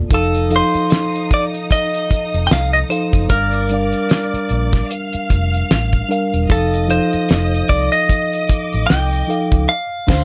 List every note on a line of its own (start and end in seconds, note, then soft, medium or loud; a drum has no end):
0.09 0.60 F1 medium
0.09 0.37 F3 medium
0.09 3.26 D#4 medium
0.09 0.38 D#4 medium
0.09 0.38 A4 medium
0.09 3.26 D#6 medium
0.09 kick loud
0.09 closed hi-hat medium
0.13 0.54 A4 medium
0.13 0.39 F5 medium
0.35 closed hi-hat medium
0.49 1.49 F3 medium
0.49 1.49 D#4 medium
0.49 1.50 A4 medium
0.49 1.50 F5 medium
0.49 closed hi-hat medium
0.56 1.29 C5 medium
0.74 muted fingered electric bass stroke soft
0.74 closed hi-hat soft
0.90 snare loud
0.90 closed hi-hat medium
1.15 closed hi-hat soft
1.31 1.44 D5 medium
1.31 kick medium
1.31 closed hi-hat medium
1.54 closed hi-hat medium
1.71 2.46 D#5 medium
1.71 kick medium
1.71 closed hi-hat medium
1.94 closed hi-hat medium
2.11 muted fingered electric bass stroke soft
2.11 kick medium
2.11 closed hi-hat medium
2.34 2.47 F1 medium
2.34 closed hi-hat soft
2.47 2.51 G5 medium
2.51 2.82 C2 loud
2.51 2.73 F5 loud
2.51 snare loud
2.51 closed hi-hat medium
2.73 2.78 D#5 loud
2.73 closed hi-hat soft
2.89 3.16 F3 medium
2.89 3.17 D#4 medium
2.89 3.17 A4 medium
2.89 3.29 C5 medium
2.89 3.18 F5 medium
2.89 closed hi-hat medium
3.13 3.26 F#1 medium
3.13 kick medium
3.13 closed hi-hat medium
3.28 3.92 G1 medium
3.28 3.56 G3 medium
3.28 3.56 D4 medium
3.28 4.85 A#4 medium
3.28 3.57 A#4 medium
3.28 4.86 D5 medium
3.28 3.57 F5 medium
3.28 4.86 D6 medium
3.28 kick loud
3.28 closed hi-hat medium
3.53 closed hi-hat medium
3.69 4.68 G3 medium
3.69 4.69 D4 medium
3.69 4.70 A#4 medium
3.69 closed hi-hat medium
3.74 4.70 F5 medium
3.93 closed hi-hat soft
4.09 snare loud
4.09 closed hi-hat medium
4.34 muted fingered electric bass stroke soft
4.34 closed hi-hat medium
4.49 4.81 A#1 medium
4.49 closed hi-hat medium
4.72 kick loud
4.72 snare soft
4.72 closed hi-hat medium
4.89 6.46 F5 medium
4.89 6.46 F6 medium
4.89 closed hi-hat medium
5.13 muted fingered electric bass stroke soft
5.13 closed hi-hat medium
5.30 5.61 F1 medium
5.30 kick medium
5.30 closed hi-hat medium
5.54 closed hi-hat soft
5.71 6.01 A1 medium
5.71 snare loud
5.71 closed hi-hat medium
5.93 kick medium
5.93 closed hi-hat soft
6.09 6.36 G3 medium
6.09 6.36 D4 medium
6.09 6.37 A#4 medium
6.09 6.37 F5 medium
6.09 closed hi-hat medium
6.34 6.46 E1 medium
6.34 closed hi-hat medium
6.48 6.99 F1 loud
6.48 6.75 F3 medium
6.48 6.76 D#4 medium
6.48 6.77 A4 medium
6.48 6.90 A4 medium
6.48 8.44 D#5 medium
6.48 6.77 F5 medium
6.48 8.44 D#6 medium
6.48 kick loud
6.48 closed hi-hat medium
6.73 closed hi-hat medium
6.88 7.87 F3 medium
6.88 7.87 D#4 medium
6.88 7.88 A4 medium
6.88 7.72 C5 medium
6.88 7.88 F5 medium
6.88 closed hi-hat medium
7.13 muted fingered electric bass stroke soft
7.13 closed hi-hat soft
7.29 7.61 F1 medium
7.29 snare loud
7.29 closed hi-hat medium
7.54 closed hi-hat medium
7.69 7.87 C2 loud
7.69 7.92 D5 medium
7.69 kick medium
7.69 closed hi-hat medium
7.92 8.86 D#5 medium
7.92 closed hi-hat medium
8.09 kick medium
8.09 closed hi-hat medium
8.33 closed hi-hat medium
8.47 9.66 D#5 medium
8.47 9.65 D6 medium
8.47 muted fingered electric bass stroke medium
8.47 kick medium
8.47 closed hi-hat medium
8.73 8.86 A1 medium
8.73 closed hi-hat soft
8.87 9.68 G5 loud
8.87 snare loud
8.87 closed hi-hat medium
8.91 9.21 C2 medium
9.13 closed hi-hat soft
9.27 9.54 F3 medium
9.27 9.55 D#4 medium
9.27 9.55 A4 medium
9.27 9.56 F5 medium
9.27 closed hi-hat medium
9.52 9.65 C#2 medium
9.52 kick medium
9.52 closed hi-hat medium
9.69 10.24 F5 medium
10.07 10.24 D2 medium
10.07 10.24 D3 loud
10.07 10.24 D4 loud
10.07 10.24 C5 medium
10.07 10.24 F5 loud
10.07 10.24 C6 loud
10.07 kick loud
10.07 snare loud
10.07 crash medium